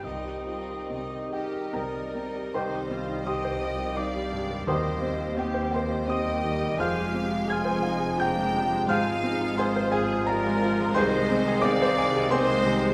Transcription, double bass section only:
\new Staff \with { instrumentName = "Double bass section" } { \clef bass \time 3/4 \key c \minor \tempo 4 = 86 c,4 c,4 c,4 | c,2. | ees,2. | f,,2. |
aes,,2. | \key aes \lydian c,2. | }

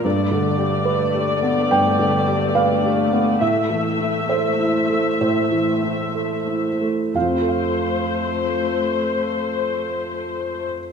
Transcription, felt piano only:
\new Staff \with { instrumentName = "Felt piano" } { \time 4/4 \key f \major \tempo 4 = 65 << { r2 g''4 f''4 | e''4 c''4 c''2 | <f, f c' f' a' f''>1 | } \\ { \tuplet 3/2 { g,8 d8 g'8 b'8 g'8 b8 g,8 d8 g'8 b'8 g'8 b8 } | \tuplet 3/2 { a,8 e8 e'8 a'8 e'8 a8 a,8 e8 e'8 a'8 e'8 a8 } | r1 | } >> }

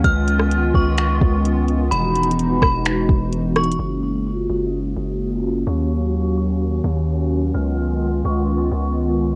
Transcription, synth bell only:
\new Staff \with { instrumentName = "Synth bell" } { \time 4/4 \key fis \major \tempo 4 = 128 eis'''4. cis'''4. r4 | b''4. b''8 r4. cis'''8 | fis'''4. dis'''4. r4 | cis'''4. cis'''8 r2 |
eis'''4. cis'''4. r4 | }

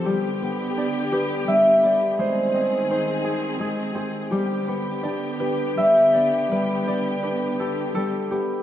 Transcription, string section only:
\new Staff \with { instrumentName = "String section" } { \time 6/8 \key g \mixolydian \tempo 4. = 56 <d b g'>2. | <ees c' aes'>2. | <d b g'>2.~ | <d b g'>2. | }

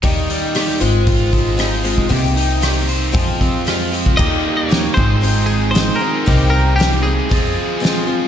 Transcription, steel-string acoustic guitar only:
\new Staff \with { instrumentName = "Steel-string acoustic guitar" } { \time 4/4 \key f \minor \tempo 4 = 116 <ees g bes ees' g'>4 <g bes ees' g'>8 <aes, ees f aes c' f'>4. <f aes c' f'>8 <f aes c' f'>8 | <c ees bes c' g'>4 <ees bes c' g'>4 <f, c f aes c' f'>4 <f aes c' f'>8 <f aes c' f'>8 | <ees bes ees' g'>4 <ees bes ees' g'>8 <f aes c' aes'>8 <f aes c' aes'>4 <f aes c' aes'>8 <f aes c' aes'>8 | <c ees bes c' g'>4 <ees bes c' g'>8 <bes c' g'>8 <f aes c' f'>4 <f aes c' f'>8 <f aes c' f'>8 | }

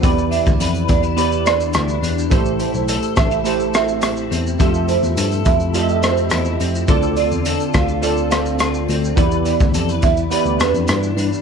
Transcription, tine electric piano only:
\new Staff \with { instrumentName = "Tine electric piano" } { \clef bass \time 4/4 \key e \phrygian \tempo 4 = 105 e,8. d,16 f,8 e,4. d,8 e,8 | a,,8. b,,8 r16 a,,2 e,8 | f,8. e,16 g,8 f,4. e,8 f,8 | d,8. e,8 r16 d,2 d,8 |
e,8. d,16 f,8 e,8 r16 d,16 e,16 f,16 g,8 g,16 r16 | }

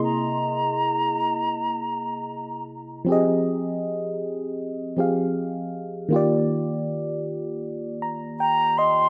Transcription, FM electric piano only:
\new Staff \with { instrumentName = "FM electric piano" } { \time 4/4 \key ees \major \tempo 4 = 79 << { r1 | r1 | r2 r8 bes''8 g''8 ees''8 | } \\ { <c bes e' gis' dis''>2.~ <c bes e' gis' dis''>8 r8 | <f c' g' aes' ees''>2~ <f c' g' aes' ees''>8 <f c' g' aes' f''>4. | <ees bes f' g' d''>1 | } >> }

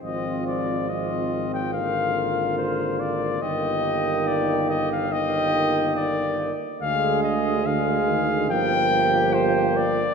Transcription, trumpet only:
\new Staff \with { instrumentName = "Trumpet" } { \time 4/4 \key ees \major \tempo 4 = 71 ees''8 d''8 ees''8. g''16 f''4 c''8 d''8 | ees''4 d''8 ees''16 f''16 ees''4 d''8. r16 | f''8 ees''8 f''4 g''4 c''8 d''8 | }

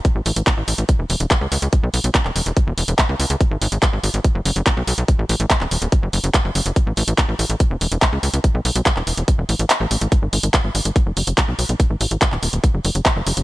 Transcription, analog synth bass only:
\new Staff \with { instrumentName = "Analog synth bass" } { \clef bass \time 4/4 \key gis \phrygian \tempo 4 = 143 r16 a,,16 a,,16 a,,16 r16 a,,16 a,,16 a,,16 r16 e,,16 e,,16 e,,16 r16 cis,16 cis,16 cis,16 | r16 b,,16 b,,16 b,,16 r16 e,,16 e,,16 e,,16 r16 e,,16 e,,16 e,,16 r16 cis,16 cis,16 cis,16 | r16 gis,,16 gis,,16 gis,,16 r16 gis,,16 gis,,16 gis,,16 r16 fis,,16 fis,,16 fis,,16 r16 b,,16 b,,16 b,,16 | r16 a,,16 a,,16 a,,16 r16 dis,,16 dis,,16 dis,,16 r16 fis,,16 fis,,16 fis,,16 r16 fis,,16 fis,,16 fis,,16 |
r16 a,,16 a,,16 a,,16 r16 a,,16 a,,16 a,,16 r16 e,,16 e,,16 e,,16 r16 cis,16 cis,16 cis,16 | r16 b,,16 b,,16 b,,16 r16 e,,16 e,,16 e,,16 r16 e,,16 a,,16 a,,16 r16 a,,16 a,,16 a,,16 | r16 gis,,16 gis,,16 gis,,16 r16 gis,,16 gis,,16 gis,,16 r16 fis,,16 fis,,16 fis,,16 r16 b,,16 b,,16 b,,16 | r16 a,,16 a,,16 a,,16 r16 dis,,16 dis,,16 dis,,16 r16 fis,,16 fis,,16 fis,,16 r16 fis,,16 fis,,16 fis,,16 | }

